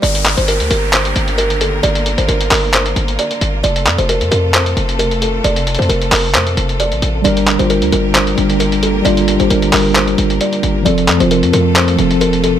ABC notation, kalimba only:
X:1
M:4/4
L:1/16
Q:1/4=133
K:Gm
V:1 name="Kalimba"
d3 c B2 B2 c4 B2 A2 | d3 c B2 B2 c4 d2 z2 | d3 c B2 B2 c4 B2 A2 | d3 c B2 B2 c4 d2 z2 |
d3 c B2 B2 c4 B2 A2 | d3 c B2 B2 c4 d2 z2 | d3 c B2 B2 c4 B2 A2 |]